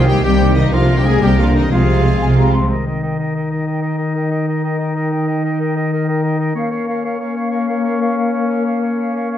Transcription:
Already playing: C2 C3 D#3 A#3 D#4 G#4
0.01 F3 F4 F5
0.08 G3 G4 G5
0.23 C2 C3 G3 G4 G5
0.41 A#3 D#4
0.55 D#3 D#4 D#5
0.72 C2 C3 D3 F3 F4 A#4 F5
0.89 A#3 D4
0.96 G3 G4 G5
1.04 G#3 G#4 G#5
1.20 C2 C3 G3 G4 G5
1.38 F3 A#3 D4 F4 F5
1.55 D#3 D#4 D#5
1.70 C2 C3 F3 G#3 C4 F4 G#4 F5
1.89 G#3 C4
2.21 C2 C3 G#5
2.37 G#3 C4 A#5
2.54 C6
2.69 D#3 D#4 A#4 D#5 G5
2.86 A#4 D#5 G5
3.03 A#4 D#5 G5
3.18 A#4 D#5 G5
3.35 A#4 D#5 G5
3.50 A#4 D#5 G5
3.66 A#4 D#5 G5
3.82 A#4 D#5 G5
3.98 A#4 D#5 G5
4.15 A#4 D#5 G5
4.31 A#4 D#5 G5
4.48 A#4 D#5 G5
4.64 A#4 D#5 G5
4.79 A#4 D#5 G5
4.96 A#4 D#5 G5
5.11 A#4 D#5 G5
5.27 A#4 D#5 G5
5.44 A#4 D#5 G5
5.60 A#4 D#5 G5
5.76 A#4 D#5 G5
5.92 A#4 D#5 G5
6.08 A#4 D#5 G5
6.23 A#4 D#5 G5
6.39 A#4 D#5 G5
6.55 A#3 C#4 A#4 C#5 F5
6.71 A#4 C#5 F5
6.87 A#4 C#5 F5
7.03 A#4 C#5 F5
7.19 A#4 C#5 F5
7.36 A#4 C#5 F5
7.50 A#4 C#5 F5
7.66 A#4 C#5 F5
7.82 A#4 C#5 F5
7.99 A#4 C#5 F5
8.16 A#4 C#5 F5
8.31 A#4 C#5 F5
8.48 A#4 C#5 F5
8.65 A#4 C#5 F5
8.82 A#4 C#5 F5
8.97 A#4 C#5 F5
9.14 A#4 C#5 F5
9.31 A#4 C#5 F5

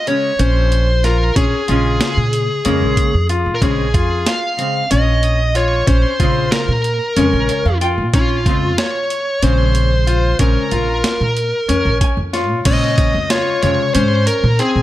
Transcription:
0.07 C#3 G#3 C#4 C#5, closed hi-hat
0.39 A#1 C#4 C5, closed hi-hat
0.72 closed hi-hat
1.04 F4 A#4, snare, closed hi-hat
1.36 A#1 C#4 G#4, kick, closed hi-hat
1.68 A#1 C#3 G#3 C#4 F4, closed hi-hat
2.01 snare, closed hi-hat
2.17 A#2
2.33 closed hi-hat
2.65 F2 C#3 G#3 A#3 C#4, closed hi-hat
2.82 A#1
2.97 kick, closed hi-hat
3.14 F2
3.29 F4, closed hi-hat
3.46 A#2
3.55 A#4
3.61 A#1 C#3 G#3 C4 C#4 G#4, kick, closed hi-hat
3.94 F2 F4, kick, closed hi-hat
4.26 F5, snare, closed hi-hat
4.58 C#3 G#3 C4, closed hi-hat
4.91 A#1 C#4 D#5, closed hi-hat
5.23 closed hi-hat
5.55 F4 C#5, closed hi-hat
5.87 A#1 C#4 C5, kick, closed hi-hat
6.20 A#1 C#3 G#3 C4 F4, kick, closed hi-hat
6.52 A#4, snare, closed hi-hat
6.68 A#2
6.84 closed hi-hat
7.16 F2 C#3 G#3 C#4, closed hi-hat
7.33 A#1
7.49 C#5, closed hi-hat
7.65 F2 F5
7.81 F4 G5, closed hi-hat
7.98 A#2
8.13 A#1 C#4 F4, kick, closed hi-hat
8.46 F2 C#3 G#3 C4 F4, kick, closed hi-hat
8.78 C#5, snare, closed hi-hat
9.10 closed hi-hat
9.42 A#1 C#3 G#3 C4 C#4 C5, closed hi-hat
9.75 closed hi-hat
10.07 F4, closed hi-hat
10.39 A#1 C#3 G#3 C4 C#4 A#4, kick, closed hi-hat
10.71 A#1 F4, closed hi-hat
11.04 snare, closed hi-hat
11.21 A#2
11.37 closed hi-hat
11.68 F2 C#4, closed hi-hat
11.85 A#1
12.01 G#5, kick, closed hi-hat
12.17 F2
12.33 F4 C#5, snare, closed hi-hat
12.50 A#2
12.65 A#2 C#3 G#3 C4 C#4 D#5, kick, closed hi-hat, crash
12.98 kick, closed hi-hat
13.14 F2
13.30 F4 C#5, snare, closed hi-hat
13.63 F2 C3 C#3 G#3 C#5, closed hi-hat
13.94 G#2 C#4 C5, closed hi-hat
14.27 A#4, closed hi-hat
14.44 A#2
14.59 C4 G#4, closed hi-hat
14.76 A#2

